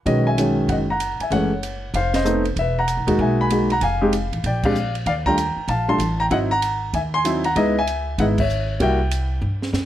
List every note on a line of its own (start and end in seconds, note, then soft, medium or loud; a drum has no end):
0.06 0.65 B1 medium
0.06 0.36 D#3 medium
0.06 0.36 F#3 medium
0.06 0.36 G#3 medium
0.06 0.36 C#4 medium
0.06 0.26 B4 medium
0.06 0.27 D#5 medium
0.06 kick soft
0.06 ride medium
0.27 0.67 E5 medium
0.27 0.70 G#5 medium
0.38 0.85 D#3 medium
0.38 0.85 F#3 medium
0.38 0.85 G#3 medium
0.38 0.85 C#4 medium
0.38 hi-hat pedal medium
0.38 ride medium
0.68 1.16 F#1 medium
0.68 0.77 D#5 medium
0.68 0.74 F#5 medium
0.68 kick soft
0.68 ride medium
0.90 1.19 F#5 medium
0.90 1.19 A#5 medium
1.00 hi-hat pedal medium
1.00 ride medium
1.20 1.32 E5 medium
1.20 1.31 G#5 medium
1.20 muted upright bass stroke soft
1.20 ride soft
1.30 1.90 F#1 medium
1.30 1.49 E3 medium
1.30 1.49 G#3 medium
1.30 1.49 A3 medium
1.30 1.49 C#4 medium
1.30 1.91 C#5 medium
1.30 1.90 F#5 medium
1.30 kick soft
1.30 ride medium
1.63 hi-hat pedal medium
1.63 ride medium
1.94 2.53 F1 medium
1.94 2.14 C5 medium
1.94 2.15 F5 medium
1.94 kick soft
1.94 ride medium
2.14 2.44 C5 medium
2.14 2.43 D#5 medium
2.14 snare medium
2.14 ride medium
2.25 2.43 A3 medium
2.25 2.43 B3 medium
2.25 2.43 C4 medium
2.25 2.43 D#4 medium
2.25 hi-hat pedal medium
2.45 ride soft
2.56 2.95 E1 medium
2.56 2.78 E5 medium
2.56 kick soft
2.56 ride medium
2.60 2.77 B4 medium
2.79 3.18 F#5 medium
2.79 3.21 A#5 medium
2.88 hi-hat pedal medium
2.88 ride medium
2.97 3.06 B1 medium
3.07 3.17 D#2 medium
3.07 3.48 G#3 medium
3.07 3.48 A#3 medium
3.07 3.47 D#4 medium
3.07 3.48 F#4 medium
3.07 ride medium
3.19 3.78 B1 medium
3.19 3.39 E5 medium
3.19 3.38 G#5 medium
3.19 kick soft
3.41 3.69 G#5 medium
3.41 3.72 B5 medium
3.50 3.68 G#3 medium
3.50 3.68 A#3 medium
3.50 3.69 D#4 medium
3.50 3.69 F#4 medium
3.50 hi-hat pedal medium
3.50 ride medium
3.70 3.82 F#5 medium
3.70 3.82 A#5 loud
3.70 ride soft
3.81 4.29 F1 medium
3.81 4.41 F5 medium
3.81 4.40 G#5 medium
3.81 kick soft
3.81 ride medium
4.01 4.12 G#3 medium
4.01 4.11 C4 medium
4.01 4.11 D#4 medium
4.01 4.12 G4 medium
4.13 hi-hat pedal medium
4.13 ride medium
4.32 4.43 A1 medium
4.32 ride soft
4.44 5.03 A#1 medium
4.44 4.64 D5 medium
4.44 4.65 G5 medium
4.44 kick soft
4.44 ride medium
4.63 4.74 G#3 medium
4.63 4.75 C4 medium
4.63 4.74 D4 medium
4.63 4.74 G4 medium
4.63 4.94 D5 medium
4.63 4.94 F5 medium
4.63 kick medium
4.63 crash medium
4.75 hi-hat pedal medium
4.95 ride soft
5.06 5.54 D#2 medium
5.06 5.14 D5 medium
5.06 5.12 F5 loud
5.06 kick soft
5.06 ride medium
5.26 5.37 G3 medium
5.26 5.37 A3 medium
5.26 5.37 D4 medium
5.26 5.37 F4 medium
5.26 5.66 G5 medium
5.26 5.70 A#5 loud
5.26 kick medium
5.38 hi-hat pedal medium
5.38 ride medium
5.56 muted upright bass stroke soft
5.68 5.97 A#1 medium
5.68 5.88 F5 medium
5.68 5.87 A5 medium
5.68 kick soft
5.68 ride medium
5.88 5.99 G3 medium
5.88 5.99 A3 medium
5.88 5.99 D4 medium
5.88 5.99 F4 medium
5.88 6.18 A5 medium
5.88 6.21 C6 loud
5.98 6.28 A1 medium
5.98 hi-hat pedal medium
5.98 ride medium
6.20 6.26 G5 medium
6.20 6.25 A#5 loud
6.30 6.90 G#1 medium
6.30 6.49 F#3 medium
6.30 6.49 C4 medium
6.30 6.49 D#4 medium
6.30 6.49 E4 medium
6.30 6.38 D#5 medium
6.30 6.37 F#5 loud
6.30 kick soft
6.30 ride medium
6.51 6.91 F#5 medium
6.51 6.90 A#5 loud
6.62 hi-hat pedal medium
6.62 ride medium
6.93 7.53 D#2 medium
6.93 7.00 E5 medium
6.93 6.99 G#5 medium
6.93 kick soft
6.93 ride medium
7.14 7.43 G#5 medium
7.14 7.43 C6 loud
7.24 7.42 F#3 medium
7.24 7.43 C4 medium
7.24 7.43 D#4 medium
7.24 7.43 E4 medium
7.24 hi-hat pedal medium
7.24 ride medium
7.44 7.56 F#5 medium
7.44 7.56 A#5 medium
7.44 ride soft
7.56 8.15 C#2 medium
7.56 7.74 G#3 medium
7.56 7.74 B3 medium
7.56 7.74 D#4 medium
7.56 7.74 E4 medium
7.56 7.75 B4 medium
7.56 7.77 D#5 medium
7.56 kick soft
7.56 ride medium
7.79 8.17 E5 medium
7.79 8.21 G#5 loud
7.87 hi-hat pedal medium
7.87 ride medium
8.18 8.77 G#1 medium
8.18 8.36 G#3 medium
8.18 8.36 B3 medium
8.18 8.36 D#4 medium
8.18 8.37 E4 medium
8.18 8.26 D#5 medium
8.18 8.25 F#5 medium
8.18 kick soft
8.18 ride medium
8.38 8.79 C#5 medium
8.38 8.82 E5 medium
8.38 kick medium
8.38 crash medium
8.49 hi-hat pedal medium
8.80 9.39 C2 medium
8.80 8.98 G3 medium
8.80 8.98 A#3 medium
8.80 8.98 E4 medium
8.80 8.98 F#4 medium
8.80 9.71 E5 medium
8.80 9.71 G5 medium
8.80 kick soft
8.80 ride medium
9.11 hi-hat pedal medium
9.11 ride medium
9.42 9.71 G2 medium
9.62 snare medium
9.73 9.85 F#2 medium
9.73 snare medium
9.73 hi-hat pedal medium